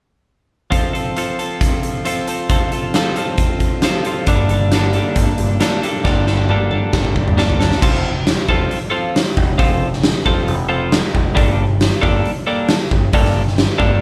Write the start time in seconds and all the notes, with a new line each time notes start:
0.71 F3 C4 F4 A4, kick, closed hi-hat
0.93 C4 F4 A4, closed hi-hat
1.17 F3 C4 F4 A4, closed hi-hat
1.39 C4 F4 A4, closed hi-hat
1.61 kick, closed hi-hat
1.83 closed hi-hat
2.05 F3 C4 F4 A4, closed hi-hat
2.27 C4 F4 A4, closed hi-hat
2.49 F3 C4 F4 A4, kick, closed hi-hat
2.72 C4 F4 A4, closed hi-hat
2.94 F3 C4 F4 A4, snare, closed hi-hat
3.16 C4 F4 A4, closed hi-hat
3.38 kick, closed hi-hat
3.60 kick, closed hi-hat
3.82 F3 C4 F4 A4, snare, closed hi-hat
4.05 C4 F4 A4, closed hi-hat
4.27 G1 G2 D3 G3 A#3 D4 A4, kick, closed hi-hat
4.49 G3 A#3 D4 A4, closed hi-hat
4.72 G2 D3 G3 A#3 D4 A4, snare, closed hi-hat
4.93 G3 A#3 D4 A4, closed hi-hat
5.16 G1, kick, closed hi-hat
5.38 G1, closed hi-hat
5.60 G3 A#3 D4 A4, snare, closed hi-hat
5.82 G3 A#3 D4 A4, closed hi-hat
6.04 G1 G2 D3 G3 A#3 D4 A4, kick, snare
6.27 G3 A#3 D4 A4, snare
6.49 G2 D3 G3 A#3 D4 A4, mid tom
6.71 G3 A#3 D4 A4, mid tom
6.93 G1, kick, snare
7.05 G1, kick
7.16 G1, kick
7.28 mid tom
7.37 G3 A#3 D4 A4, snare
7.50 floor tom
7.60 G3 A#3 D4 A4, snare
7.72 snare
7.82 F1 F3 C4 F4 A4, kick, crash
7.93 snare
8.27 snare, open hi-hat
8.49 F1 F3 C4 F4 A4, kick
8.71 open hi-hat
8.90 F3 C4 F4 A4
9.16 snare, open hi-hat
9.37 F1, kick
9.58 F1 F3 C4 F4 A4, kick, open hi-hat
9.93 snare
10.03 snare, open hi-hat
10.26 F1 F3 C4 F4 A4, kick
10.47 F1, open hi-hat
10.69 F3 C4 F4 A4
10.92 snare, open hi-hat
11.15 F1, kick
11.35 G1 G3 A#3 D4 A4, kick, open hi-hat
11.81 snare, open hi-hat
12.01 G1 G3 A#3 D4 A4, kick
12.25 open hi-hat
12.47 G3 A#3 D4 A4
12.69 snare, open hi-hat
12.91 G1, kick
13.13 G1 G3 A#3 D4 A4, kick, open hi-hat
13.25 snare
13.48 snare
13.58 snare, open hi-hat
13.78 G1 G3 A#3 D4 A4, kick